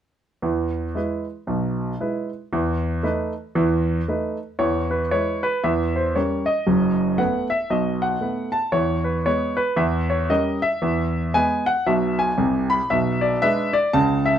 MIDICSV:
0, 0, Header, 1, 2, 480
1, 0, Start_track
1, 0, Key_signature, 4, "major"
1, 0, Tempo, 519031
1, 403, Time_signature, 4, 2, 24, 8
1, 13306, End_track
2, 0, Start_track
2, 0, Title_t, "Grand piano"
2, 0, Program_c, 0, 0
2, 392, Note_on_c, 0, 40, 54
2, 394, Note_on_c, 0, 52, 53
2, 613, Control_c, 0, 64, 127
2, 806, Note_off_c, 0, 40, 0
2, 806, Note_off_c, 0, 52, 0
2, 878, Note_on_c, 0, 56, 41
2, 883, Note_on_c, 0, 64, 44
2, 893, Control_c, 0, 64, 0
2, 893, Note_on_c, 0, 71, 44
2, 1144, Note_off_c, 0, 56, 0
2, 1148, Note_off_c, 0, 64, 0
2, 1155, Note_off_c, 0, 71, 0
2, 1361, Note_on_c, 0, 47, 51
2, 1364, Note_on_c, 0, 35, 56
2, 1771, Note_off_c, 0, 47, 0
2, 1773, Note_off_c, 0, 35, 0
2, 1852, Note_on_c, 0, 56, 38
2, 1855, Note_on_c, 0, 64, 44
2, 1860, Note_on_c, 0, 71, 39
2, 2115, Note_off_c, 0, 56, 0
2, 2117, Note_off_c, 0, 64, 0
2, 2120, Note_off_c, 0, 71, 0
2, 2336, Note_on_c, 0, 40, 67
2, 2336, Note_on_c, 0, 52, 54
2, 2510, Control_c, 0, 64, 127
2, 2740, Note_off_c, 0, 40, 0
2, 2740, Note_off_c, 0, 52, 0
2, 2804, Note_on_c, 0, 57, 50
2, 2810, Note_on_c, 0, 63, 51
2, 2810, Note_on_c, 0, 71, 52
2, 2818, Control_c, 0, 64, 0
2, 3069, Note_off_c, 0, 57, 0
2, 3073, Note_off_c, 0, 63, 0
2, 3074, Note_off_c, 0, 71, 0
2, 3286, Note_on_c, 0, 52, 75
2, 3288, Note_on_c, 0, 40, 69
2, 3695, Note_off_c, 0, 52, 0
2, 3696, Note_off_c, 0, 40, 0
2, 3775, Note_on_c, 0, 57, 41
2, 3780, Note_on_c, 0, 63, 46
2, 3781, Note_on_c, 0, 71, 46
2, 4037, Note_off_c, 0, 57, 0
2, 4041, Note_off_c, 0, 63, 0
2, 4041, Note_off_c, 0, 71, 0
2, 4243, Note_on_c, 0, 73, 71
2, 4246, Note_on_c, 0, 40, 64
2, 4246, Note_on_c, 0, 52, 60
2, 4417, Control_c, 0, 64, 127
2, 4538, Note_on_c, 0, 71, 56
2, 4541, Note_off_c, 0, 73, 0
2, 4655, Note_off_c, 0, 40, 0
2, 4655, Note_off_c, 0, 52, 0
2, 4721, Note_off_c, 0, 71, 0
2, 4729, Note_on_c, 0, 73, 74
2, 4730, Note_on_c, 0, 56, 38
2, 4733, Note_on_c, 0, 64, 41
2, 4735, Note_on_c, 0, 71, 45
2, 4736, Control_c, 0, 64, 0
2, 4993, Note_off_c, 0, 56, 0
2, 4996, Note_off_c, 0, 64, 0
2, 4997, Note_off_c, 0, 71, 0
2, 5021, Note_on_c, 0, 71, 78
2, 5024, Note_off_c, 0, 73, 0
2, 5207, Note_off_c, 0, 71, 0
2, 5212, Note_on_c, 0, 76, 73
2, 5215, Note_on_c, 0, 40, 70
2, 5216, Note_on_c, 0, 52, 61
2, 5367, Control_c, 0, 64, 127
2, 5506, Note_off_c, 0, 76, 0
2, 5510, Note_on_c, 0, 72, 63
2, 5619, Note_off_c, 0, 40, 0
2, 5620, Note_off_c, 0, 52, 0
2, 5691, Note_off_c, 0, 72, 0
2, 5692, Note_on_c, 0, 73, 62
2, 5694, Note_on_c, 0, 55, 33
2, 5699, Control_c, 0, 64, 0
2, 5700, Note_on_c, 0, 61, 36
2, 5703, Note_on_c, 0, 70, 46
2, 5956, Note_off_c, 0, 55, 0
2, 5960, Note_off_c, 0, 61, 0
2, 5963, Note_off_c, 0, 70, 0
2, 5973, Note_on_c, 0, 75, 78
2, 5985, Note_off_c, 0, 73, 0
2, 6165, Note_on_c, 0, 30, 60
2, 6166, Note_on_c, 0, 42, 64
2, 6355, Control_c, 0, 64, 127
2, 6574, Note_off_c, 0, 30, 0
2, 6574, Note_off_c, 0, 42, 0
2, 6640, Note_on_c, 0, 57, 44
2, 6640, Note_on_c, 0, 59, 44
2, 6641, Note_on_c, 0, 78, 74
2, 6642, Note_off_c, 0, 75, 0
2, 6649, Note_on_c, 0, 71, 42
2, 6659, Control_c, 0, 64, 0
2, 6905, Note_off_c, 0, 57, 0
2, 6905, Note_off_c, 0, 59, 0
2, 6912, Note_off_c, 0, 71, 0
2, 6935, Note_on_c, 0, 76, 78
2, 6940, Note_off_c, 0, 78, 0
2, 7122, Note_on_c, 0, 47, 55
2, 7123, Note_off_c, 0, 76, 0
2, 7123, Note_on_c, 0, 35, 57
2, 7126, Note_on_c, 0, 75, 66
2, 7416, Note_on_c, 0, 78, 75
2, 7422, Note_off_c, 0, 75, 0
2, 7532, Note_off_c, 0, 35, 0
2, 7532, Note_off_c, 0, 47, 0
2, 7592, Note_on_c, 0, 57, 37
2, 7601, Note_on_c, 0, 59, 36
2, 7601, Note_on_c, 0, 71, 40
2, 7860, Note_off_c, 0, 57, 0
2, 7866, Note_off_c, 0, 59, 0
2, 7866, Note_off_c, 0, 71, 0
2, 7879, Note_on_c, 0, 81, 77
2, 7898, Note_off_c, 0, 78, 0
2, 8065, Note_on_c, 0, 73, 74
2, 8067, Note_on_c, 0, 52, 62
2, 8068, Note_on_c, 0, 40, 59
2, 8074, Note_off_c, 0, 81, 0
2, 8261, Control_c, 0, 64, 127
2, 8363, Note_on_c, 0, 71, 54
2, 8371, Note_off_c, 0, 73, 0
2, 8482, Note_off_c, 0, 52, 0
2, 8483, Note_off_c, 0, 40, 0
2, 8553, Note_off_c, 0, 71, 0
2, 8560, Note_on_c, 0, 59, 42
2, 8562, Note_on_c, 0, 56, 39
2, 8562, Note_on_c, 0, 73, 76
2, 8567, Note_on_c, 0, 71, 48
2, 8574, Control_c, 0, 64, 0
2, 8825, Note_off_c, 0, 59, 0
2, 8826, Note_off_c, 0, 56, 0
2, 8830, Note_off_c, 0, 71, 0
2, 8847, Note_on_c, 0, 71, 75
2, 8859, Note_off_c, 0, 73, 0
2, 9028, Note_on_c, 0, 52, 60
2, 9031, Note_on_c, 0, 40, 73
2, 9032, Note_on_c, 0, 76, 73
2, 9038, Note_off_c, 0, 71, 0
2, 9213, Control_c, 0, 64, 127
2, 9334, Note_off_c, 0, 76, 0
2, 9338, Note_on_c, 0, 73, 63
2, 9442, Note_off_c, 0, 52, 0
2, 9444, Note_off_c, 0, 40, 0
2, 9520, Note_on_c, 0, 55, 41
2, 9523, Note_off_c, 0, 73, 0
2, 9523, Note_on_c, 0, 61, 43
2, 9524, Note_on_c, 0, 75, 76
2, 9529, Note_on_c, 0, 70, 51
2, 9536, Control_c, 0, 64, 0
2, 9784, Note_off_c, 0, 55, 0
2, 9787, Note_off_c, 0, 61, 0
2, 9791, Note_off_c, 0, 70, 0
2, 9819, Note_off_c, 0, 75, 0
2, 9823, Note_on_c, 0, 76, 80
2, 10004, Note_on_c, 0, 52, 59
2, 10006, Note_on_c, 0, 40, 62
2, 10156, Control_c, 0, 64, 127
2, 10411, Note_off_c, 0, 52, 0
2, 10412, Note_off_c, 0, 40, 0
2, 10484, Note_off_c, 0, 76, 0
2, 10487, Note_on_c, 0, 56, 47
2, 10490, Note_on_c, 0, 59, 53
2, 10490, Note_on_c, 0, 80, 87
2, 10494, Control_c, 0, 64, 0
2, 10500, Note_on_c, 0, 71, 56
2, 10750, Note_off_c, 0, 56, 0
2, 10751, Note_off_c, 0, 59, 0
2, 10758, Note_off_c, 0, 71, 0
2, 10781, Note_off_c, 0, 80, 0
2, 10786, Note_on_c, 0, 78, 89
2, 10966, Note_off_c, 0, 78, 0
2, 10973, Note_on_c, 0, 76, 71
2, 10974, Note_on_c, 0, 35, 67
2, 10974, Note_on_c, 0, 47, 64
2, 11262, Note_off_c, 0, 76, 0
2, 11271, Note_on_c, 0, 80, 77
2, 11376, Note_off_c, 0, 35, 0
2, 11376, Note_off_c, 0, 47, 0
2, 11446, Note_on_c, 0, 48, 63
2, 11447, Note_on_c, 0, 36, 64
2, 11743, Note_off_c, 0, 80, 0
2, 11743, Note_on_c, 0, 83, 88
2, 11827, Note_off_c, 0, 48, 0
2, 11828, Note_off_c, 0, 36, 0
2, 11923, Note_off_c, 0, 83, 0
2, 11932, Note_on_c, 0, 76, 81
2, 11933, Note_on_c, 0, 47, 65
2, 11936, Note_on_c, 0, 35, 60
2, 12096, Control_c, 0, 64, 127
2, 12219, Note_on_c, 0, 74, 75
2, 12221, Note_off_c, 0, 76, 0
2, 12334, Note_off_c, 0, 47, 0
2, 12336, Note_off_c, 0, 35, 0
2, 12401, Note_off_c, 0, 74, 0
2, 12407, Control_c, 0, 64, 0
2, 12410, Note_on_c, 0, 76, 90
2, 12413, Note_on_c, 0, 71, 59
2, 12414, Note_on_c, 0, 62, 51
2, 12416, Note_on_c, 0, 56, 57
2, 12673, Note_off_c, 0, 62, 0
2, 12673, Note_off_c, 0, 71, 0
2, 12674, Note_off_c, 0, 56, 0
2, 12700, Note_off_c, 0, 76, 0
2, 12701, Note_on_c, 0, 74, 85
2, 12881, Note_off_c, 0, 74, 0
2, 12886, Note_on_c, 0, 37, 62
2, 12886, Note_on_c, 0, 81, 92
2, 12891, Note_on_c, 0, 49, 77
2, 13082, Control_c, 0, 64, 127
2, 13177, Note_off_c, 0, 81, 0
2, 13183, Note_on_c, 0, 76, 83
2, 13290, Note_off_c, 0, 37, 0
2, 13292, Note_off_c, 0, 49, 0
2, 13306, Note_off_c, 0, 76, 0
2, 13306, End_track
0, 0, End_of_file